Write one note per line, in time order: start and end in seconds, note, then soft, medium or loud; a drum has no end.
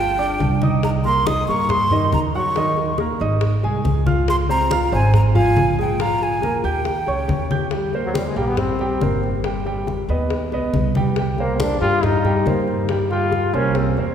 0.00 0.36 G1 medium
0.00 0.10 F4 medium
0.00 0.10 F5 medium
0.00 0.61 G5 loud
0.00 0.11 F6 medium
0.18 0.54 D4 medium
0.18 0.54 D5 medium
0.18 0.54 D6 medium
0.18 high bongo soft
0.18 high conga soft
0.40 1.42 C2 medium
0.40 high bongo soft
0.40 low bongo medium
0.40 high conga medium
0.62 0.97 D#4 medium
0.62 0.98 D#5 medium
0.62 0.98 D#6 medium
0.62 high conga medium
0.83 0.90 A#5 medium
0.83 high bongo medium
0.83 high conga soft
1.05 1.23 A#3 medium
1.05 1.23 A#4 medium
1.05 1.23 A#5 medium
1.05 1.28 C6 loud
1.05 high bongo soft
1.05 high conga soft
1.26 1.44 D#4 medium
1.26 1.44 D#5 medium
1.26 1.47 D#6 loud
1.26 1.45 D#6 medium
1.26 high bongo medium
1.26 high conga medium
1.48 2.08 G2 medium
1.48 1.84 A#3 medium
1.48 1.84 A#4 medium
1.48 1.84 A#5 medium
1.48 1.71 C#6 loud
1.48 high bongo soft
1.48 high conga soft
1.69 2.13 C6 loud
1.69 high bongo medium
1.69 high conga soft
1.69 low conga medium
1.91 2.26 D#3 medium
1.91 2.27 D#4 medium
1.91 2.27 D#5 medium
1.91 high bongo soft
1.91 high conga soft
1.91 low conga medium
2.12 3.14 D#2 medium
2.12 2.20 A#5 medium
2.12 high bongo soft
2.12 low bongo medium
2.12 high conga medium
2.34 2.52 F#3 medium
2.34 2.52 F#4 medium
2.34 2.52 F#5 medium
2.34 2.96 C#6 loud
2.34 high conga soft
2.55 2.91 D#3 medium
2.55 2.92 D#4 medium
2.55 2.92 D#5 medium
2.55 high bongo medium
2.55 high conga soft
2.77 high bongo soft
2.77 high conga soft
2.98 3.17 A#3 medium
2.98 3.17 A#4 medium
2.98 3.17 A#5 medium
2.98 high bongo medium
2.98 high conga medium
3.20 3.61 G#1 medium
3.20 3.56 D#4 medium
3.20 3.56 D#5 medium
3.20 3.56 D#6 medium
3.20 high bongo soft
3.20 high conga soft
3.41 high bongo medium
3.41 high conga soft
3.63 3.84 C2 medium
3.63 3.99 G#3 medium
3.63 3.99 G#4 medium
3.63 3.99 G#5 medium
3.63 high bongo soft
3.63 high conga soft
3.84 4.86 C#2 medium
3.84 high bongo soft
3.84 low bongo medium
3.84 high conga medium
4.06 4.42 F4 medium
4.06 4.42 F5 medium
4.06 4.42 F6 medium
4.06 high conga medium
4.28 4.36 C6 loud
4.28 high bongo medium
4.28 high conga soft
4.49 4.67 C4 medium
4.49 4.67 C5 medium
4.49 4.90 A#5 loud
4.49 4.67 C6 medium
4.49 high bongo soft
4.49 high conga soft
4.71 4.89 F4 medium
4.71 4.89 F5 medium
4.71 4.89 F6 medium
4.71 high bongo medium
4.71 high conga medium
4.92 5.53 G#1 medium
4.92 5.28 C4 medium
4.92 5.28 C5 medium
4.92 5.13 G#5 medium
4.92 5.28 C6 medium
4.92 high bongo soft
4.92 high conga soft
5.13 5.21 A#5 loud
5.13 high bongo medium
5.13 high conga soft
5.13 low conga medium
5.34 5.70 F3 medium
5.34 5.71 F4 medium
5.34 5.71 F5 medium
5.34 5.76 G#5 loud
5.34 high bongo soft
5.34 high conga soft
5.34 low conga medium
5.56 6.58 A#1 medium
5.56 high bongo soft
5.56 low bongo medium
5.56 high conga medium
5.78 5.96 G#3 medium
5.78 5.96 G#4 medium
5.78 6.03 G5 medium
5.78 5.96 G#5 medium
5.78 high conga soft
5.99 6.35 F3 medium
5.99 6.35 F4 medium
5.99 6.36 F5 medium
5.99 6.24 A#5 loud
5.99 high bongo medium
5.99 high conga soft
6.22 6.64 G#5 medium
6.22 high bongo soft
6.22 high conga soft
6.42 6.61 A#3 medium
6.42 6.61 A#4 medium
6.42 6.61 A#5 medium
6.42 high bongo medium
6.42 high conga medium
6.64 7.04 D#2 medium
6.64 7.00 G4 medium
6.64 7.47 G5 medium
6.64 7.00 G5 medium
6.64 7.00 G6 medium
6.64 high bongo soft
6.64 high conga soft
6.85 high bongo medium
6.85 high conga soft
7.07 7.27 C#2 medium
7.07 7.43 C#4 medium
7.07 7.43 C#5 medium
7.07 7.43 C#6 medium
7.07 high bongo soft
7.07 high conga soft
7.28 8.31 D#2 medium
7.28 high bongo soft
7.28 low bongo medium
7.28 high conga medium
7.51 7.69 G4 medium
7.51 7.69 G5 medium
7.51 7.69 G6 medium
7.51 high conga medium
7.71 7.90 G3 medium
7.71 7.90 G4 medium
7.71 7.90 G5 medium
7.71 high bongo medium
7.71 high conga soft
7.93 8.29 A#3 medium
7.93 8.29 A#4 medium
7.93 8.30 C5 medium
7.93 high bongo soft
7.93 high conga soft
8.05 8.17 F#3 medium
8.14 8.28 G3 medium
8.14 high bongo medium
8.14 high conga medium
8.26 8.39 G#3 medium
8.36 8.97 A#1 medium
8.36 8.72 G3 medium
8.36 8.49 A#3 medium
8.36 8.72 G4 medium
8.36 8.72 G5 medium
8.36 high bongo soft
8.36 high conga soft
8.47 8.59 B3 medium
8.57 9.44 C4 medium
8.57 high bongo medium
8.57 high conga soft
8.57 low conga medium
8.79 8.98 G3 medium
8.79 8.98 G4 medium
8.79 8.98 G5 medium
8.79 high bongo soft
8.79 high conga soft
9.01 10.03 G1 medium
9.01 9.37 A#3 medium
9.01 9.37 A#4 medium
9.01 9.37 C5 medium
9.01 high bongo soft
9.01 low bongo medium
9.01 high conga medium
9.23 high conga soft
9.44 9.62 G3 medium
9.44 9.62 G4 medium
9.44 9.62 G5 medium
9.44 high bongo medium
9.44 high conga soft
9.65 10.01 G3 medium
9.65 10.02 G4 medium
9.65 10.02 G5 medium
9.65 high bongo soft
9.65 high conga soft
9.87 high bongo medium
9.87 high conga medium
10.09 10.49 D#2 medium
10.09 10.45 B3 medium
10.09 10.45 B4 medium
10.09 10.45 D#5 medium
10.09 high bongo soft
10.09 high conga soft
10.30 high bongo medium
10.30 high conga soft
10.52 10.72 C#2 medium
10.52 10.88 B3 medium
10.52 10.88 B4 medium
10.52 10.88 D#5 medium
10.52 high bongo soft
10.52 high conga soft
10.74 11.75 C2 medium
10.74 high bongo soft
10.74 low bongo medium
10.74 high conga medium
10.95 11.14 G3 medium
10.95 11.14 G4 medium
10.95 11.14 G5 medium
10.95 high conga medium
11.16 11.35 G3 medium
11.16 11.35 G4 medium
11.16 11.35 G5 medium
11.16 high bongo medium
11.16 high conga soft
11.38 11.60 A#3 medium
11.38 11.75 A#3 medium
11.38 11.75 A#4 medium
11.38 11.75 C5 medium
11.38 high bongo soft
11.38 high conga soft
11.59 11.80 D4 medium
11.59 high bongo medium
11.59 high conga loud
11.81 12.42 G2 medium
11.81 12.17 G3 medium
11.81 12.05 F4 loud
11.81 12.17 G4 medium
11.81 12.17 G5 medium
11.81 high bongo soft
11.81 high conga soft
12.03 12.68 D#4 medium
12.03 high bongo medium
12.03 high conga soft
12.03 low conga medium
12.24 12.43 G3 medium
12.24 12.43 G4 medium
12.24 12.43 G5 medium
12.24 high bongo soft
12.24 high conga soft
12.24 low conga medium
12.46 13.47 G2 medium
12.46 12.82 A#3 medium
12.46 12.82 A#4 medium
12.46 12.82 C5 medium
12.46 high bongo soft
12.46 low bongo medium
12.46 high conga medium
12.68 high conga soft
12.89 13.07 G3 medium
12.89 13.08 G4 medium
12.89 13.08 G5 medium
12.89 high bongo medium
12.89 high conga soft
13.10 13.47 G3 medium
13.10 13.56 F4 medium
13.10 13.47 G4 medium
13.10 13.47 G5 medium
13.10 high bongo soft
13.10 high conga soft
13.32 high bongo medium
13.32 high conga medium
13.53 13.94 C2 medium
13.53 13.89 A#3 medium
13.53 13.76 C#4 medium
13.53 13.90 A#4 medium
13.53 13.90 C5 medium
13.53 high bongo soft
13.53 high conga soft
13.75 13.97 C4 medium
13.75 high bongo medium
13.75 high conga soft
13.97 14.15 E2 medium
13.97 14.15 A#3 medium
13.97 14.15 A#4 medium
13.97 14.15 C5 medium
13.97 high bongo soft
13.97 high conga soft